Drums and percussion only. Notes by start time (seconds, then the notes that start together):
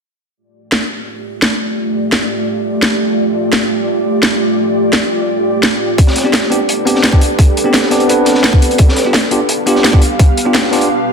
0.72 snare
1.42 snare
2.12 snare
2.82 snare
3.53 snare
4.23 snare
4.93 snare
5.63 snare
5.98 kick, closed hi-hat
6.07 snare
6.16 snare, closed hi-hat
6.33 snare, closed hi-hat
6.52 closed hi-hat
6.69 closed hi-hat
6.87 closed hi-hat
6.95 snare
7.04 snare, closed hi-hat
7.12 kick
7.21 closed hi-hat
7.39 kick, closed hi-hat
7.57 closed hi-hat
7.74 snare, closed hi-hat
7.82 snare
7.91 snare, closed hi-hat
8.00 closed hi-hat
8.09 closed hi-hat
8.25 snare, closed hi-hat
8.35 snare
8.43 snare, closed hi-hat
8.53 kick
8.62 closed hi-hat
8.71 closed hi-hat
8.78 kick, closed hi-hat
8.89 snare
8.96 snare, closed hi-hat
9.13 snare, closed hi-hat
9.31 closed hi-hat
9.49 closed hi-hat
9.67 closed hi-hat
9.75 snare
9.84 snare, closed hi-hat
9.93 kick
10.02 closed hi-hat
10.19 kick, closed hi-hat
10.37 closed hi-hat
10.54 snare, closed hi-hat
10.64 snare
10.72 snare, closed hi-hat
10.81 closed hi-hat